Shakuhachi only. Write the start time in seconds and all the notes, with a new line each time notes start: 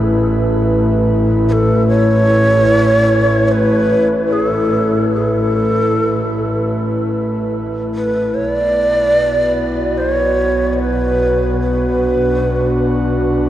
1.49 A4 B4
1.88 C#5
3.48 B4 C#5
4.32 G#4
4.48 A4
5.13 G#4
5.30 A4
7.95 B4
8.34 C#5
8.49 D5
9.97 C5
10.12 C#5
10.73 C#5
10.79 B4
11.61 B4